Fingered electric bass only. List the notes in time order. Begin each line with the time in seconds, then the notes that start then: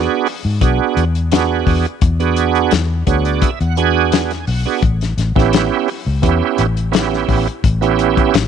0.45 G#2
0.62 B1
0.97 E2
1.67 E2
2.02 E2
2.72 E2
3.07 D2
3.61 E2
4.48 B1
4.82 A1
5.18 A1
5.36 A1
6.07 C#2
6.23 E2
6.59 A1
7.28 A1
7.64 A1
8.35 A1